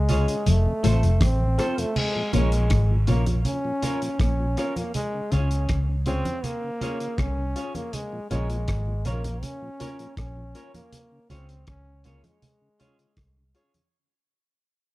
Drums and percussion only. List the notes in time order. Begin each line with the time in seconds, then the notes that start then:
0.09 closed hi-hat, low conga
0.28 closed hi-hat
0.46 closed hi-hat, low conga
0.84 closed hi-hat, low conga
1.03 closed hi-hat
1.21 kick, cross-stick, closed hi-hat, high conga
1.59 cross-stick, closed hi-hat
1.78 closed hi-hat
1.96 crash, low conga
2.33 closed hi-hat, low conga
2.52 closed hi-hat
2.70 kick, cross-stick, closed hi-hat, high conga
3.07 closed hi-hat, low conga
3.26 closed hi-hat, high conga
3.45 closed hi-hat, low conga
3.83 closed hi-hat, low conga
4.02 closed hi-hat
4.20 kick, cross-stick, closed hi-hat
4.57 cross-stick, closed hi-hat
4.76 closed hi-hat, high conga
4.94 closed hi-hat, low conga
5.32 closed hi-hat, low conga
5.51 closed hi-hat
5.69 kick, cross-stick, closed hi-hat, high conga
6.06 closed hi-hat, low conga
6.25 closed hi-hat, high conga
6.44 closed hi-hat, low conga
6.81 closed hi-hat, low conga
7.00 closed hi-hat
7.18 kick, cross-stick, closed hi-hat
7.56 closed hi-hat
7.75 closed hi-hat, high conga
7.93 closed hi-hat, low conga
8.31 closed hi-hat, low conga
8.50 closed hi-hat
8.68 kick, cross-stick, closed hi-hat, high conga
9.05 closed hi-hat, low conga
9.24 closed hi-hat, high conga
9.43 closed hi-hat, low conga
9.80 closed hi-hat, low conga
9.99 closed hi-hat
10.17 kick, cross-stick, closed hi-hat
10.55 closed hi-hat
10.74 closed hi-hat, high conga
10.92 closed hi-hat, low conga
11.30 closed hi-hat, low conga
11.49 closed hi-hat
11.67 kick, cross-stick, closed hi-hat, high conga
12.04 closed hi-hat, low conga
12.24 closed hi-hat, high conga
12.42 closed hi-hat, low conga
12.80 closed hi-hat, low conga
12.99 closed hi-hat
13.17 kick, cross-stick, closed hi-hat
13.55 closed hi-hat
13.74 closed hi-hat, high conga